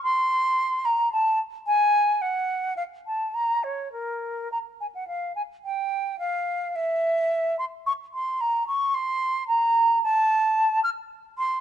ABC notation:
X:1
M:3/4
L:1/16
Q:1/4=109
K:Bbm
V:1 name="Flute"
c'6 b2 =a2 z2 | a4 g4 f2 =a2 | b2 d2 B4 b2 a g | [K:Cphr] f2 a2 g4 f4 |
=e6 c'2 d'2 c'2 | b2 d'2 c'4 b4 | =a6 f'2 z2 c'2 |]